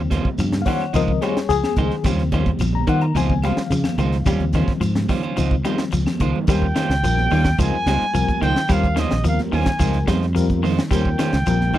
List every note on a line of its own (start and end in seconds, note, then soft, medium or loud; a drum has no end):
0.00 0.21 D#2 medium
0.00 0.62 C#3 medium
0.00 0.62 F3 soft
0.00 0.62 G3 soft
0.00 0.62 C4 medium
0.10 0.28 G3 medium
0.10 0.28 C#4 medium
0.10 0.28 F4 medium
0.10 0.28 C5 medium
0.10 kick medium
0.10 snare soft
0.10 closed hi-hat medium
0.10 high conga loud
0.10 shekere soft
0.25 kick medium
0.25 high conga medium
0.38 0.62 G2 medium
0.38 0.64 F3 medium
0.38 closed hi-hat medium
0.38 claves medium
0.38 shekere medium
0.52 snare medium
0.52 closed hi-hat soft
0.52 high conga medium
0.62 0.65 F5 medium
0.62 open hi-hat medium
0.66 0.92 D#3 medium
0.66 0.84 G3 medium
0.66 0.84 C#4 medium
0.66 0.84 F4 medium
0.66 0.84 C5 medium
0.66 0.92 C#5 medium
0.66 0.94 F#5 medium
0.66 kick medium
0.66 low conga medium
0.66 shekere soft
0.80 snare soft
0.80 closed hi-hat soft
0.80 claves medium
0.93 1.18 C#2 medium
0.93 1.31 D#3 medium
0.93 1.32 F3 soft
0.93 1.20 F3 medium
0.93 1.11 G#3 medium
0.93 1.32 C4 medium
0.93 1.11 D#4 medium
0.93 1.11 F4 medium
0.93 1.21 A#4 medium
0.93 1.11 C5 medium
0.93 1.22 D#5 loud
0.93 closed hi-hat medium
0.93 shekere medium
1.08 kick medium
1.22 1.47 G3 medium
1.22 1.39 G#3 medium
1.22 1.39 D#4 medium
1.22 1.39 F4 medium
1.22 1.47 G#4 medium
1.22 1.39 C5 medium
1.22 1.49 C#5 medium
1.22 snare soft
1.22 closed hi-hat medium
1.22 high conga loud
1.22 claves medium
1.22 shekere soft
1.37 snare medium
1.37 closed hi-hat soft
1.49 1.61 C#2 medium
1.49 1.75 F3 medium
1.49 2.03 G#4 loud
1.49 closed hi-hat medium
1.49 shekere medium
1.63 snare medium
1.63 high conga medium
1.63 claves medium
1.76 1.89 C#2 medium
1.76 2.02 D#3 medium
1.76 1.94 G#3 medium
1.76 1.94 D#4 medium
1.76 1.95 C5 medium
1.76 kick medium
1.76 closed hi-hat medium
1.76 low conga medium
1.76 shekere soft
1.91 snare soft
2.03 2.51 D#2 medium
2.03 2.83 C#3 medium
2.03 2.83 F3 medium
2.03 2.83 G3 soft
2.03 2.21 G3 medium
2.03 2.30 G3 medium
2.03 2.84 C4 medium
2.03 2.22 C#4 medium
2.03 2.22 F4 medium
2.03 2.22 C5 medium
2.03 kick loud
2.03 closed hi-hat medium
2.03 low conga medium
2.03 claves medium
2.03 shekere medium
2.18 snare soft
2.32 2.58 D#3 medium
2.32 2.49 G3 medium
2.32 2.49 C#4 medium
2.32 2.50 F4 medium
2.32 2.50 C5 medium
2.32 kick medium
2.32 closed hi-hat medium
2.32 high conga loud
2.32 shekere soft
2.46 kick medium
2.46 closed hi-hat soft
2.46 high conga medium
2.59 2.83 A#1 medium
2.59 2.85 F3 medium
2.59 closed hi-hat medium
2.59 claves medium
2.59 shekere medium
2.73 2.87 A#5 loud
2.73 high conga medium
2.87 3.11 D#3 loud
2.87 3.12 D#3 medium
2.87 3.04 G3 medium
2.87 3.05 F4 medium
2.87 3.05 C5 medium
2.87 3.02 F#5 loud
2.87 kick medium
2.87 closed hi-hat medium
2.87 low conga medium
2.87 shekere soft
3.01 3.15 A#5 medium
3.01 closed hi-hat soft
3.01 claves medium
3.15 3.51 C#2 loud
3.15 4.22 D#3 medium
3.15 4.23 F3 soft
3.15 3.41 F3 medium
3.15 3.32 G#3 medium
3.15 4.23 C4 medium
3.15 3.33 D#4 medium
3.15 3.33 F4 medium
3.15 3.33 C5 medium
3.15 3.43 G#5 medium
3.15 closed hi-hat medium
3.15 high conga medium
3.15 shekere medium
3.30 kick medium
3.42 3.69 G3 medium
3.42 3.60 G#3 medium
3.42 3.61 F4 medium
3.42 3.61 C5 medium
3.42 4.51 F5 medium
3.42 snare soft
3.42 closed hi-hat medium
3.42 high conga loud
3.42 claves medium
3.42 shekere soft
3.57 muted fingered electric bass stroke soft
3.57 snare medium
3.70 3.83 C#3 loud
3.70 3.96 F3 medium
3.70 closed hi-hat medium
3.70 shekere medium
3.84 snare medium
3.84 high conga medium
3.84 claves medium
3.98 4.22 C#2 loud
3.98 4.23 D#3 medium
3.98 4.16 G#3 medium
3.98 4.16 D#4 medium
3.98 4.16 F4 medium
3.98 4.16 C5 medium
3.98 closed hi-hat medium
3.98 low conga medium
3.98 shekere soft
4.12 snare soft
4.12 closed hi-hat soft
4.25 4.38 D#2 loud
4.25 5.33 C#3 medium
4.25 5.33 F3 medium
4.25 4.43 G3 medium
4.25 5.33 G3 medium
4.25 4.51 G3 medium
4.25 5.33 C4 medium
4.25 4.43 C#4 medium
4.25 4.43 F4 medium
4.25 muted clean electric guitar stroke medium
4.25 kick loud
4.25 closed hi-hat medium
4.25 low conga medium
4.25 claves medium
4.25 shekere medium
4.40 4.64 D#2 medium
4.40 closed hi-hat soft
4.53 4.79 D#3 medium
4.53 4.71 C#4 medium
4.53 4.71 F4 medium
4.53 4.72 C5 medium
4.53 muted clean electric guitar stroke medium
4.53 kick medium
4.53 snare soft
4.53 closed hi-hat medium
4.53 high conga loud
4.53 low conga medium
4.53 shekere soft
4.67 muted fingered electric bass stroke soft
4.67 kick medium
4.67 snare soft
4.81 5.05 G#2 medium
4.81 5.06 F3 medium
4.81 closed hi-hat medium
4.81 claves medium
4.81 shekere medium
4.95 snare medium
4.95 closed hi-hat soft
4.95 high conga medium
5.09 5.34 D#3 medium
5.09 5.23 G3 medium
5.09 5.24 C#4 medium
5.09 5.23 F4 medium
5.09 5.23 C5 medium
5.09 kick medium
5.09 snare soft
5.09 open hi-hat medium
5.09 low conga medium
5.09 shekere soft
5.23 5.37 C#4 soft
5.23 5.37 F4 soft
5.23 5.37 C5 medium
5.23 closed hi-hat soft
5.23 claves medium
5.37 5.61 C#2 loud
5.37 6.16 D#3 medium
5.37 5.62 F3 medium
5.37 6.17 F3 medium
5.37 5.54 G#3 medium
5.37 6.17 C4 medium
5.37 5.54 D#4 medium
5.37 5.54 F4 medium
5.37 5.54 C5 medium
5.37 closed hi-hat medium
5.37 shekere loud
5.51 kick medium
5.64 5.89 G3 medium
5.64 5.82 G#3 medium
5.64 5.82 D#4 medium
5.64 5.82 F4 medium
5.64 5.82 C5 medium
5.64 closed hi-hat medium
5.64 high conga loud
5.64 claves medium
5.64 shekere soft
5.78 snare medium
5.78 closed hi-hat soft
5.92 6.05 C#2 medium
5.92 6.17 F3 medium
5.92 closed hi-hat medium
5.92 shekere medium
6.06 snare medium
6.06 high conga loud
6.06 claves medium
6.19 6.32 C#2 medium
6.19 6.45 D#3 medium
6.19 6.38 G#3 medium
6.19 6.38 F4 medium
6.19 6.38 C5 medium
6.19 muted clean electric guitar stroke medium
6.19 kick medium
6.19 closed hi-hat medium
6.19 shekere soft
6.36 low conga medium
6.47 6.71 D#2 medium
6.47 6.73 G3 medium
6.47 6.65 G3 medium
6.47 6.73 G3 medium
6.47 6.73 C4 medium
6.47 6.65 C#4 medium
6.47 6.73 F4 medium
6.47 6.66 F4 medium
6.47 6.73 A#4 medium
6.47 6.66 C5 medium
6.47 kick loud
6.47 closed hi-hat medium
6.47 shekere medium
6.52 7.57 G5 loud
6.62 kick medium
6.75 7.00 D#3 medium
6.75 6.92 G3 medium
6.75 6.93 C#4 medium
6.75 6.93 F4 medium
6.75 6.93 C5 medium
6.75 snare medium
6.75 closed hi-hat medium
6.75 high conga medium
6.75 shekere soft
6.89 7.01 C#2 medium
6.89 snare medium
6.89 closed hi-hat soft
7.03 7.27 A#1 medium
7.03 7.29 F3 medium
7.03 7.28 G3 medium
7.03 7.28 C4 medium
7.03 7.28 F4 medium
7.03 7.29 A#4 medium
7.03 closed hi-hat medium
7.03 shekere medium
7.17 snare soft
7.17 high conga medium
7.30 7.55 D#2 loud
7.30 7.56 D#3 medium
7.30 7.48 G3 medium
7.30 7.48 C#4 medium
7.30 7.48 F4 medium
7.30 open hi-hat medium
7.30 low conga medium
7.30 shekere soft
7.44 kick medium
7.44 snare medium
7.58 7.71 C#2 medium
7.58 7.84 F3 medium
7.58 7.84 G3 medium
7.58 7.76 G#3 medium
7.58 7.84 C4 medium
7.58 7.76 D#4 medium
7.58 7.84 F4 medium
7.58 7.76 F4 medium
7.58 7.84 A#4 medium
7.58 7.76 C5 medium
7.58 kick medium
7.58 closed hi-hat medium
7.58 shekere loud
7.63 8.40 G#5 loud
7.86 7.98 C#2 loud
7.86 8.12 G3 medium
7.86 8.03 G#3 medium
7.86 8.04 D#4 medium
7.86 8.04 F4 medium
7.86 8.04 C5 medium
7.86 snare medium
7.86 closed hi-hat medium
7.86 high conga loud
7.86 shekere soft
8.01 muted fingered electric bass stroke soft
8.01 snare soft
8.14 8.26 C2 medium
8.14 8.39 F3 medium
8.14 8.39 G3 medium
8.14 8.39 C4 medium
8.14 8.39 F4 medium
8.14 8.39 A#4 loud
8.14 closed hi-hat medium
8.14 shekere loud
8.28 kick medium
8.28 closed hi-hat soft
8.28 high conga medium
8.41 8.54 C#2 medium
8.41 8.66 D#3 medium
8.41 8.59 G#3 medium
8.41 8.59 D#4 medium
8.41 8.59 F4 medium
8.41 8.60 C5 medium
8.41 8.74 G5 loud
8.41 closed hi-hat medium
8.41 low conga medium
8.41 shekere soft
8.56 snare medium
8.56 closed hi-hat soft
8.69 9.05 D#2 loud
8.69 8.94 G3 loud
8.69 8.86 G3 medium
8.69 8.94 G3 medium
8.69 8.95 C4 medium
8.69 8.86 C#4 medium
8.69 8.95 F4 medium
8.69 8.87 F4 medium
8.69 8.95 A#4 medium
8.69 8.87 C5 medium
8.69 9.01 F5 loud
8.69 kick loud
8.69 closed hi-hat medium
8.69 shekere medium
8.84 kick medium
8.84 closed hi-hat soft
8.96 9.21 D#3 medium
8.96 9.14 G3 medium
8.96 9.14 C#4 medium
8.96 9.15 F4 medium
8.96 9.15 C5 medium
8.96 9.26 D#5 medium
8.96 snare medium
8.96 closed hi-hat medium
8.96 high conga loud
8.96 shekere soft
9.11 9.23 A#1 medium
9.11 snare medium
9.11 high conga medium
9.24 9.37 D#2 loud
9.24 9.49 F3 medium
9.24 9.50 G3 medium
9.24 9.50 C4 medium
9.24 9.50 F4 medium
9.24 9.50 A#4 medium
9.24 closed hi-hat medium
9.24 shekere medium
9.28 9.40 F5 medium
9.39 snare soft
9.39 closed hi-hat soft
9.39 high conga medium
9.52 9.65 D#2 medium
9.52 9.77 D#3 medium
9.52 9.70 G3 medium
9.52 9.70 C#4 medium
9.52 9.70 F4 medium
9.52 9.70 C5 medium
9.52 10.05 G#5 loud
9.52 open hi-hat medium
9.52 low conga medium
9.52 shekere soft
9.66 kick medium
9.66 snare medium
9.66 closed hi-hat soft
9.79 10.04 C#2 loud
9.79 10.05 F3 medium
9.79 10.05 G3 medium
9.79 9.97 G#3 medium
9.79 10.05 C4 medium
9.79 9.97 D#4 medium
9.79 9.97 F4 medium
9.79 10.06 F4 medium
9.79 10.06 A#4 medium
9.79 9.98 C5 medium
9.79 kick medium
9.79 closed hi-hat medium
9.79 shekere loud
9.93 snare soft
9.93 closed hi-hat soft
10.07 10.79 F2 loud
10.07 10.32 G3 medium
10.07 10.25 G#3 medium
10.07 10.25 D#4 medium
10.07 10.25 F4 medium
10.07 10.25 C5 medium
10.07 kick medium
10.07 snare medium
10.07 closed hi-hat medium
10.07 high conga loud
10.07 shekere soft
10.23 snare soft
10.23 closed hi-hat soft
10.35 10.60 F3 medium
10.35 10.61 G3 loud
10.35 10.60 C4 loud
10.35 10.61 F4 loud
10.35 10.61 A#4 loud
10.35 closed hi-hat medium
10.35 shekere medium
10.49 kick medium
10.49 closed hi-hat soft
10.49 high conga medium
10.63 10.88 D#3 medium
10.63 10.80 G#3 medium
10.63 10.81 D#4 medium
10.63 10.81 F4 medium
10.63 10.81 C5 medium
10.63 open hi-hat medium
10.63 low conga loud
10.63 shekere soft
10.79 snare medium
10.91 11.15 D#2 loud
10.91 11.16 G3 loud
10.91 11.08 G3 medium
10.91 11.17 G3 medium
10.91 11.16 C4 medium
10.91 11.09 C#4 medium
10.91 11.17 F4 medium
10.91 11.17 A#4 medium
10.91 11.09 C5 medium
10.91 11.78 G5 loud
10.91 muted clean electric guitar stroke medium
10.91 kick loud
10.91 snare soft
10.91 closed hi-hat medium
10.91 low conga medium
10.91 shekere medium
11.05 kick medium
11.19 11.44 D#3 medium
11.19 11.36 G3 medium
11.19 11.36 C#4 medium
11.19 11.36 F4 medium
11.19 11.36 C5 medium
11.19 snare medium
11.19 closed hi-hat medium
11.19 high conga loud
11.19 shekere soft
11.33 11.45 C#2 medium
11.33 snare medium
11.33 closed hi-hat soft
11.46 11.71 A#1 medium
11.46 11.71 F3 medium
11.46 11.72 G3 medium
11.46 11.72 C4 medium
11.46 11.72 F4 medium
11.46 11.72 A#4 medium
11.46 closed hi-hat medium
11.46 shekere medium
11.61 snare soft
11.61 high conga medium
11.73 11.78 D#2 loud
11.73 11.78 D#3 medium
11.73 11.78 G3 medium
11.73 11.78 C#4 medium
11.73 11.78 F4 medium
11.73 open hi-hat medium
11.73 low conga medium
11.73 shekere soft